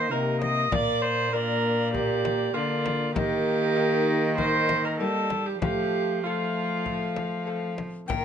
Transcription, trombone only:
0.11 A#3
0.72 A#3
1.32 A#3
2.54 A#3
3.15 A#3
5.61 A3
6.23 A3
8.08 A#3

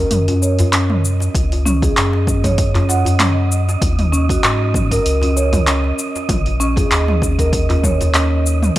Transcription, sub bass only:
0.12 F#2
1.35 C#2
1.98 F#2
3.82 D#2
4.44 G#2
5.05 C#2
6.29 A#1
6.91 D#2

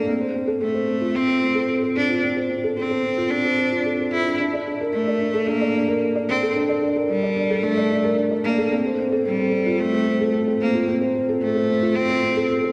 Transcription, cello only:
0.61 A3
1.15 C4
1.96 D4
2.77 C4
3.30 D4
4.12 E4
4.93 A3
5.47 A#3
6.29 C4
7.10 G3
7.63 A3
8.44 A#3
9.26 G3
9.80 A3
10.61 A#3
11.41 A3
11.95 C4

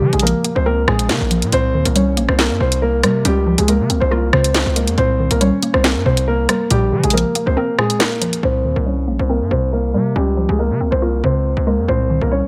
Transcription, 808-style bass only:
0.01 F3
0.13 A#1
0.56 C#2
0.88 A#1
1.09 C#3
1.21 A#1
1.42 A#2
1.53 C2
1.74 D#2
1.86 C2
2.17 A#1
2.29 C2
2.50 G2
2.60 C2
3.04 C3
3.25 C#2
3.58 C#2
3.80 C#3
3.90 C#2
4.01 C2
4.33 C#2
4.66 C#2
4.88 F2
4.98 C2
5.31 C2
5.74 C2
5.96 G2
6.06 C2
6.71 A#1
6.92 F3
7.04 A#1
7.47 C#2
8.43 C2
8.65 D#2
8.76 C2
9.08 A#1
9.19 C2
9.41 G2
9.51 C2
9.94 C3
10.16 C#2
10.49 C#2
10.70 C#3
10.81 C#2
10.92 C2
11.24 C#2
11.57 C#2
11.78 F2
11.88 C2
12.21 C2

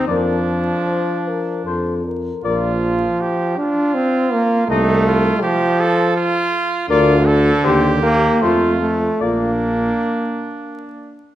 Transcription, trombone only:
0.08 F3
2.44 F3
3.57 D4
3.94 C4
4.33 A#3
4.67 A3
5.43 F3
6.89 D3
8.02 A#3
8.42 A3
8.81 A3
9.22 A#3

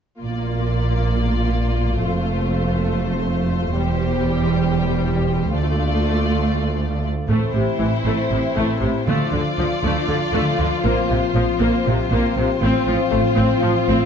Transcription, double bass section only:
0.22 A#1
1.98 F1
3.76 E1
5.53 D2
7.29 A1
7.54 A1
7.79 A1
8.05 A1
8.31 A1
8.57 A1
8.82 A1
9.07 D2
9.33 D2
9.59 D2
9.83 D2
10.08 D2
10.33 D2
10.59 D2
10.84 A#1
11.10 A#1
11.35 A#1
11.59 A#1
11.85 A#1
12.10 A#1
12.35 A#1
12.61 A1
12.87 A1
13.13 A1
13.38 A1
13.64 A1
13.88 A1

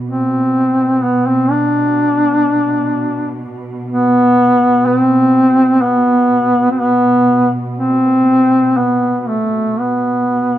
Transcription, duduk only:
0.07 C4
1.03 B3
1.27 C4
1.50 D4
3.91 B3
4.86 C4
5.82 B3
6.72 C4
6.80 B3
7.79 C4
8.77 B3
9.20 B3
9.28 A3
9.80 B3

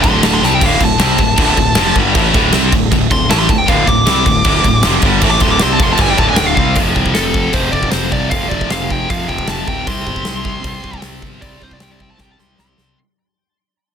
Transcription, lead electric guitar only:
0.03 C6
0.25 A5
0.34 C6
0.44 A5
0.55 G5
0.66 F5
0.84 A5
3.12 C6
3.31 A5
3.39 C6
3.51 A5
3.58 G5
3.68 F5
3.88 D6
5.30 D6
5.42 C6
5.51 D6
5.63 C6
5.73 A5
5.83 C6
5.92 A5
6.01 G#5
6.10 G5
6.19 A5
6.29 G#5
6.37 G5
6.46 F5
6.55 F5
7.14 A4
7.53 C5
7.72 D5
7.91 C5
8.12 D5
8.31 F5
8.49 D5
8.71 F5
8.91 G5
9.10 F5
9.28 G5
9.48 A5
9.68 G5
9.87 C6
11.42 D5
11.63 C5
11.73 D5
11.83 G5
11.91 D5
12.02 G5
12.10 A5
12.20 G5
12.31 A5
12.40 C6
12.60 C6

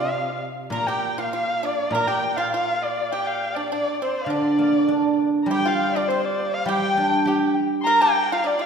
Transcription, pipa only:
Already playing: F4
0.72 A#4
0.88 G4
1.18 F4
1.33 F4
1.63 D4
1.95 A#4
2.08 G4
2.38 F4
2.54 F4
3.12 G4
3.56 D4
3.72 D4
4.02 C4
4.30 D4
5.51 G4
5.65 F4
5.96 D4
6.10 C4
6.45 A#3
6.68 G4
7.27 G4
7.87 A#4
8.02 G4
8.32 F4
8.44 D4
8.59 F4

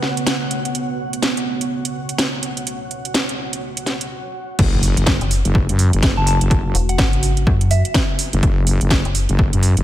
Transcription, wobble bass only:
4.59 F#1
4.97 F#1
5.45 F#1
5.69 F#2
5.93 F#1
6.17 F#1
6.41 F#1
8.33 F#1
8.43 F#1
8.81 F#1
9.29 F#1
9.53 F#2
9.77 F#1

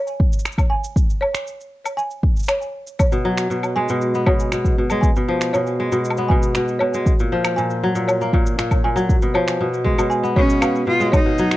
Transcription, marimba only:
Already playing: C#5
0.70 G#5
1.21 C#5
1.97 G#5
2.48 C#5
2.99 C#5
3.76 G#5
4.27 C#5
5.01 G#5
5.53 C#5
6.29 G#5
6.79 C#5
7.56 G#5
8.08 C#5
8.84 G#5
9.34 C#5
10.10 G#5
10.36 C#5
10.61 F5
11.12 C#5

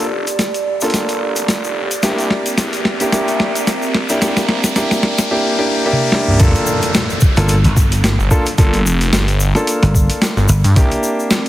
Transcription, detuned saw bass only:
Already playing: F1
0.82 G1
1.36 F1
2.03 C2
2.58 E2
3.00 C2
3.55 A#1
4.10 A#1
6.40 G1
8.19 G1
8.58 G1
8.85 F1
9.13 G1
10.37 G1
10.64 G2
10.77 C2

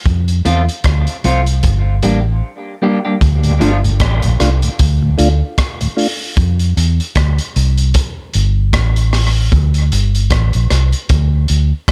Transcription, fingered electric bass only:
0.06 F2
0.46 E2
0.85 D2
1.25 C2
1.64 G1
2.04 A1
3.22 D2
3.62 G1
4.00 A1
4.25 A#1
4.40 C2
4.80 D2
5.19 D2
6.37 F2
6.77 E2
7.16 D2
7.56 C2
8.35 G1
8.73 A1
9.52 D2
9.93 G1
10.31 A1
10.55 A#1
10.71 C2
11.10 D2
11.50 D2

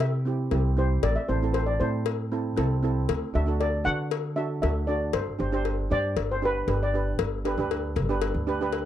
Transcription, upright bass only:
Already playing: C3
0.51 C2
1.03 A1
1.29 A1
1.81 A2
2.58 C2
3.09 D2
3.35 D2
3.86 D3
4.63 D2
5.14 G1
5.40 G1
5.91 G2
6.16 G1
6.68 G1
7.19 G1
7.57 D2
7.96 G1
8.34 D2

